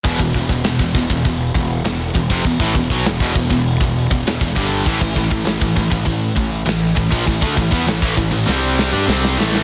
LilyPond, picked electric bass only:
\new Staff \with { instrumentName = "Picked electric bass" } { \clef bass \time 4/4 \key e \phrygian \tempo 4 = 100 e,,16 e,,16 e,,16 e,,16 e,,16 e,,16 e,,16 e,,16 e,,8 e,,8 e,,8 e,,16 f,,16 | e,,16 a,,16 e,,16 b,,16 e,,16 e,,16 e,,16 e,,8 e,,8 e,,16 e,,16 e,,16 g,,8 | a,,16 a,,16 a,,16 a,,16 a,,16 a,,16 a,,16 a,,16 a,,8 a,,8 a,,8 a,,16 ais,,16 | a,,16 d,16 a,,16 e,16 a,,16 a,,16 a,,16 a,,16 c,8. g,16 c,8 a,,8 | }